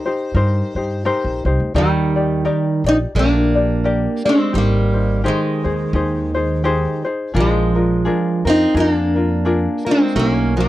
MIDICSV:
0, 0, Header, 1, 5, 480
1, 0, Start_track
1, 0, Key_signature, -3, "major"
1, 0, Tempo, 700117
1, 1199, Time_signature, 4, 2, 24, 8
1, 7325, End_track
2, 0, Start_track
2, 0, Title_t, "Ukulele"
2, 0, Program_c, 0, 24
2, 38, Note_on_c, 0, 72, 60
2, 44, Note_on_c, 0, 67, 59
2, 49, Note_on_c, 0, 63, 48
2, 233, Note_off_c, 0, 63, 0
2, 236, Note_on_c, 0, 70, 69
2, 240, Note_off_c, 0, 67, 0
2, 240, Note_off_c, 0, 72, 0
2, 241, Note_on_c, 0, 63, 61
2, 248, Note_on_c, 0, 67, 71
2, 250, Note_on_c, 0, 72, 74
2, 513, Note_off_c, 0, 72, 0
2, 516, Note_off_c, 0, 70, 0
2, 519, Note_off_c, 0, 63, 0
2, 520, Note_off_c, 0, 67, 0
2, 521, Note_on_c, 0, 72, 52
2, 528, Note_on_c, 0, 67, 54
2, 534, Note_on_c, 0, 63, 47
2, 714, Note_off_c, 0, 63, 0
2, 717, Note_off_c, 0, 67, 0
2, 720, Note_on_c, 0, 70, 89
2, 721, Note_off_c, 0, 72, 0
2, 722, Note_on_c, 0, 63, 90
2, 725, Note_on_c, 0, 67, 85
2, 728, Note_on_c, 0, 72, 94
2, 992, Note_off_c, 0, 72, 0
2, 996, Note_off_c, 0, 67, 0
2, 998, Note_off_c, 0, 70, 0
2, 999, Note_off_c, 0, 63, 0
2, 1000, Note_on_c, 0, 72, 59
2, 1005, Note_on_c, 0, 67, 49
2, 1012, Note_on_c, 0, 63, 47
2, 1191, Note_off_c, 0, 63, 0
2, 1194, Note_off_c, 0, 67, 0
2, 1199, Note_on_c, 0, 63, 76
2, 1199, Note_on_c, 0, 70, 72
2, 1200, Note_off_c, 0, 72, 0
2, 1202, Note_on_c, 0, 67, 69
2, 1205, Note_on_c, 0, 74, 73
2, 1471, Note_off_c, 0, 74, 0
2, 1477, Note_off_c, 0, 63, 0
2, 1477, Note_off_c, 0, 70, 0
2, 1478, Note_off_c, 0, 67, 0
2, 1479, Note_on_c, 0, 74, 45
2, 1487, Note_on_c, 0, 67, 46
2, 1495, Note_on_c, 0, 63, 39
2, 1671, Note_off_c, 0, 63, 0
2, 1674, Note_off_c, 0, 67, 0
2, 1677, Note_off_c, 0, 74, 0
2, 1678, Note_on_c, 0, 70, 74
2, 1679, Note_on_c, 0, 63, 74
2, 1683, Note_on_c, 0, 67, 84
2, 1685, Note_on_c, 0, 74, 76
2, 1955, Note_off_c, 0, 74, 0
2, 1956, Note_off_c, 0, 70, 0
2, 1957, Note_off_c, 0, 63, 0
2, 1958, Note_off_c, 0, 67, 0
2, 1963, Note_on_c, 0, 74, 48
2, 1971, Note_on_c, 0, 67, 48
2, 1975, Note_on_c, 0, 63, 41
2, 2157, Note_off_c, 0, 67, 0
2, 2160, Note_on_c, 0, 70, 56
2, 2161, Note_off_c, 0, 74, 0
2, 2167, Note_off_c, 0, 63, 0
2, 2172, Note_on_c, 0, 67, 64
2, 2175, Note_on_c, 0, 74, 64
2, 2427, Note_off_c, 0, 74, 0
2, 2435, Note_off_c, 0, 67, 0
2, 2435, Note_on_c, 0, 74, 52
2, 2437, Note_off_c, 0, 70, 0
2, 2444, Note_on_c, 0, 67, 44
2, 2632, Note_off_c, 0, 67, 0
2, 2634, Note_off_c, 0, 74, 0
2, 2635, Note_on_c, 0, 70, 70
2, 2641, Note_on_c, 0, 67, 79
2, 2643, Note_on_c, 0, 74, 84
2, 2906, Note_off_c, 0, 74, 0
2, 2913, Note_off_c, 0, 67, 0
2, 2914, Note_off_c, 0, 70, 0
2, 2915, Note_on_c, 0, 74, 51
2, 2921, Note_on_c, 0, 67, 46
2, 2926, Note_on_c, 0, 63, 45
2, 3098, Note_off_c, 0, 67, 0
2, 3101, Note_off_c, 0, 63, 0
2, 3106, Note_on_c, 0, 67, 68
2, 3109, Note_on_c, 0, 63, 73
2, 3113, Note_off_c, 0, 74, 0
2, 3115, Note_on_c, 0, 72, 70
2, 3377, Note_off_c, 0, 72, 0
2, 3385, Note_on_c, 0, 72, 52
2, 3390, Note_off_c, 0, 67, 0
2, 3392, Note_off_c, 0, 63, 0
2, 3400, Note_on_c, 0, 63, 42
2, 3587, Note_off_c, 0, 63, 0
2, 3589, Note_off_c, 0, 72, 0
2, 3592, Note_on_c, 0, 67, 73
2, 3595, Note_on_c, 0, 63, 76
2, 3599, Note_on_c, 0, 68, 83
2, 3600, Note_on_c, 0, 72, 81
2, 3860, Note_off_c, 0, 72, 0
2, 3869, Note_off_c, 0, 68, 0
2, 3869, Note_on_c, 0, 72, 51
2, 3873, Note_off_c, 0, 67, 0
2, 3875, Note_off_c, 0, 63, 0
2, 3877, Note_on_c, 0, 68, 51
2, 3883, Note_on_c, 0, 63, 40
2, 4069, Note_off_c, 0, 63, 0
2, 4072, Note_off_c, 0, 68, 0
2, 4072, Note_on_c, 0, 67, 58
2, 4074, Note_off_c, 0, 72, 0
2, 4077, Note_on_c, 0, 63, 62
2, 4080, Note_on_c, 0, 68, 64
2, 4085, Note_on_c, 0, 72, 67
2, 4343, Note_off_c, 0, 72, 0
2, 4351, Note_on_c, 0, 72, 63
2, 4352, Note_off_c, 0, 68, 0
2, 4353, Note_off_c, 0, 67, 0
2, 4356, Note_off_c, 0, 63, 0
2, 4360, Note_on_c, 0, 68, 54
2, 4364, Note_on_c, 0, 63, 45
2, 4548, Note_off_c, 0, 63, 0
2, 4552, Note_off_c, 0, 68, 0
2, 4552, Note_on_c, 0, 67, 89
2, 4553, Note_off_c, 0, 72, 0
2, 4556, Note_on_c, 0, 63, 79
2, 4560, Note_on_c, 0, 68, 98
2, 4562, Note_on_c, 0, 72, 94
2, 4823, Note_off_c, 0, 72, 0
2, 4831, Note_off_c, 0, 68, 0
2, 4831, Note_on_c, 0, 72, 64
2, 4833, Note_off_c, 0, 63, 0
2, 4834, Note_off_c, 0, 67, 0
2, 4839, Note_on_c, 0, 68, 55
2, 4841, Note_on_c, 0, 63, 48
2, 5022, Note_off_c, 0, 68, 0
2, 5030, Note_on_c, 0, 68, 68
2, 5032, Note_off_c, 0, 63, 0
2, 5035, Note_on_c, 0, 62, 76
2, 5036, Note_off_c, 0, 72, 0
2, 5038, Note_on_c, 0, 65, 83
2, 5044, Note_on_c, 0, 70, 73
2, 5306, Note_off_c, 0, 70, 0
2, 5311, Note_off_c, 0, 65, 0
2, 5313, Note_off_c, 0, 68, 0
2, 5314, Note_on_c, 0, 70, 49
2, 5316, Note_off_c, 0, 62, 0
2, 5320, Note_on_c, 0, 65, 42
2, 5326, Note_on_c, 0, 62, 41
2, 5515, Note_off_c, 0, 62, 0
2, 5517, Note_off_c, 0, 65, 0
2, 5518, Note_off_c, 0, 70, 0
2, 5519, Note_on_c, 0, 68, 79
2, 5524, Note_on_c, 0, 62, 82
2, 5526, Note_on_c, 0, 65, 74
2, 5529, Note_on_c, 0, 70, 78
2, 5785, Note_off_c, 0, 70, 0
2, 5793, Note_off_c, 0, 65, 0
2, 5793, Note_on_c, 0, 70, 58
2, 5798, Note_off_c, 0, 68, 0
2, 5800, Note_off_c, 0, 62, 0
2, 5802, Note_on_c, 0, 65, 44
2, 5994, Note_on_c, 0, 68, 62
2, 5997, Note_off_c, 0, 65, 0
2, 5998, Note_off_c, 0, 70, 0
2, 6000, Note_on_c, 0, 62, 56
2, 6006, Note_on_c, 0, 65, 59
2, 6009, Note_on_c, 0, 70, 68
2, 6271, Note_off_c, 0, 70, 0
2, 6276, Note_off_c, 0, 65, 0
2, 6276, Note_off_c, 0, 68, 0
2, 6279, Note_off_c, 0, 62, 0
2, 6279, Note_on_c, 0, 70, 52
2, 6284, Note_on_c, 0, 65, 45
2, 6293, Note_on_c, 0, 62, 37
2, 6475, Note_off_c, 0, 62, 0
2, 6477, Note_off_c, 0, 65, 0
2, 6479, Note_off_c, 0, 70, 0
2, 6479, Note_on_c, 0, 68, 65
2, 6483, Note_on_c, 0, 62, 85
2, 6485, Note_on_c, 0, 65, 78
2, 6487, Note_on_c, 0, 70, 83
2, 6744, Note_off_c, 0, 70, 0
2, 6752, Note_on_c, 0, 70, 51
2, 6753, Note_off_c, 0, 65, 0
2, 6759, Note_off_c, 0, 68, 0
2, 6761, Note_off_c, 0, 62, 0
2, 6762, Note_on_c, 0, 65, 43
2, 6770, Note_on_c, 0, 62, 39
2, 6954, Note_off_c, 0, 70, 0
2, 6956, Note_off_c, 0, 62, 0
2, 6959, Note_off_c, 0, 65, 0
2, 6959, Note_on_c, 0, 63, 68
2, 6961, Note_on_c, 0, 66, 73
2, 6963, Note_on_c, 0, 70, 77
2, 7231, Note_off_c, 0, 70, 0
2, 7238, Note_off_c, 0, 66, 0
2, 7239, Note_on_c, 0, 70, 53
2, 7240, Note_off_c, 0, 63, 0
2, 7246, Note_on_c, 0, 66, 42
2, 7251, Note_on_c, 0, 63, 38
2, 7325, Note_off_c, 0, 63, 0
2, 7325, Note_off_c, 0, 66, 0
2, 7325, Note_off_c, 0, 70, 0
2, 7325, End_track
3, 0, Start_track
3, 0, Title_t, "Resonator guitar played with a steel bar"
3, 0, Program_c, 1, 25
3, 0, Note_on_c, 1, 72, 77
3, 976, Note_off_c, 1, 72, 0
3, 1221, Note_on_c, 1, 55, 77
3, 1978, Note_on_c, 1, 63, 90
3, 1990, Note_off_c, 1, 55, 0
3, 2030, Note_off_c, 1, 63, 0
3, 2189, Note_on_c, 1, 62, 83
3, 2939, Note_off_c, 1, 62, 0
3, 2942, Note_on_c, 1, 60, 81
3, 3136, Note_off_c, 1, 60, 0
3, 3139, Note_on_c, 1, 58, 76
3, 3621, Note_on_c, 1, 56, 77
3, 3622, Note_off_c, 1, 58, 0
3, 4821, Note_off_c, 1, 56, 0
3, 5077, Note_on_c, 1, 56, 75
3, 5790, Note_off_c, 1, 56, 0
3, 5825, Note_on_c, 1, 63, 98
3, 6019, Note_off_c, 1, 63, 0
3, 6034, Note_on_c, 1, 63, 89
3, 6110, Note_off_c, 1, 63, 0
3, 6110, Note_on_c, 1, 62, 89
3, 6793, Note_off_c, 1, 62, 0
3, 6796, Note_on_c, 1, 60, 84
3, 6986, Note_off_c, 1, 60, 0
3, 6989, Note_on_c, 1, 61, 85
3, 7263, Note_off_c, 1, 61, 0
3, 7270, Note_on_c, 1, 59, 82
3, 7325, Note_off_c, 1, 59, 0
3, 7325, End_track
4, 0, Start_track
4, 0, Title_t, "Steel-string acoustic guitar"
4, 0, Program_c, 2, 25
4, 1206, Note_on_c, 2, 51, 82
4, 1932, Note_off_c, 2, 51, 0
4, 1964, Note_on_c, 2, 60, 82
4, 2017, Note_off_c, 2, 60, 0
4, 2166, Note_on_c, 2, 58, 77
4, 2892, Note_off_c, 2, 58, 0
4, 2918, Note_on_c, 2, 56, 74
4, 3104, Note_off_c, 2, 56, 0
4, 3121, Note_on_c, 2, 55, 83
4, 3572, Note_off_c, 2, 55, 0
4, 3607, Note_on_c, 2, 51, 64
4, 4814, Note_off_c, 2, 51, 0
4, 5049, Note_on_c, 2, 53, 79
4, 5776, Note_off_c, 2, 53, 0
4, 5809, Note_on_c, 2, 60, 83
4, 5992, Note_off_c, 2, 60, 0
4, 6013, Note_on_c, 2, 59, 86
4, 6088, Note_off_c, 2, 59, 0
4, 6088, Note_on_c, 2, 58, 86
4, 6739, Note_off_c, 2, 58, 0
4, 6764, Note_on_c, 2, 56, 65
4, 6950, Note_off_c, 2, 56, 0
4, 6965, Note_on_c, 2, 58, 83
4, 7224, Note_off_c, 2, 58, 0
4, 7246, Note_on_c, 2, 54, 65
4, 7325, Note_off_c, 2, 54, 0
4, 7325, End_track
5, 0, Start_track
5, 0, Title_t, "Upright bass"
5, 0, Program_c, 3, 32
5, 237, Note_on_c, 3, 43, 91
5, 419, Note_off_c, 3, 43, 0
5, 515, Note_on_c, 3, 43, 73
5, 737, Note_off_c, 3, 43, 0
5, 853, Note_on_c, 3, 34, 74
5, 981, Note_off_c, 3, 34, 0
5, 993, Note_on_c, 3, 36, 80
5, 1086, Note_off_c, 3, 36, 0
5, 1096, Note_on_c, 3, 38, 68
5, 1188, Note_off_c, 3, 38, 0
5, 1196, Note_on_c, 3, 39, 78
5, 1689, Note_off_c, 3, 39, 0
5, 1949, Note_on_c, 3, 34, 82
5, 2082, Note_off_c, 3, 34, 0
5, 2160, Note_on_c, 3, 34, 96
5, 2783, Note_off_c, 3, 34, 0
5, 3113, Note_on_c, 3, 32, 96
5, 3607, Note_off_c, 3, 32, 0
5, 3872, Note_on_c, 3, 39, 77
5, 4005, Note_off_c, 3, 39, 0
5, 4067, Note_on_c, 3, 39, 102
5, 4695, Note_off_c, 3, 39, 0
5, 5036, Note_on_c, 3, 34, 96
5, 5531, Note_off_c, 3, 34, 0
5, 5794, Note_on_c, 3, 41, 79
5, 5927, Note_off_c, 3, 41, 0
5, 5996, Note_on_c, 3, 41, 96
5, 6623, Note_off_c, 3, 41, 0
5, 6962, Note_on_c, 3, 35, 89
5, 7325, Note_off_c, 3, 35, 0
5, 7325, End_track
0, 0, End_of_file